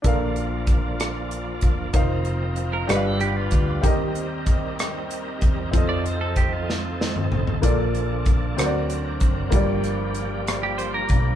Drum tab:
HH |x-x-x-x-x-x-|x-x-x-x-x-x-|x-x-x-x-x-x-|x-x-x-------|
SD |------r-----|------r-----|------r-----|------o-o---|
T2 |------------|------------|------------|---------o--|
FT |------------|------------|------------|----------oo|
BD |o---o-----o-|o---------o-|o---o-----o-|o---o-------|

HH |x-x-x-x-x-x-|x-x-x-x-x-x-|
SD |------r-----|--r---r-----|
T2 |------------|------------|
FT |------------|------------|
BD |o---o-----o-|o---------o-|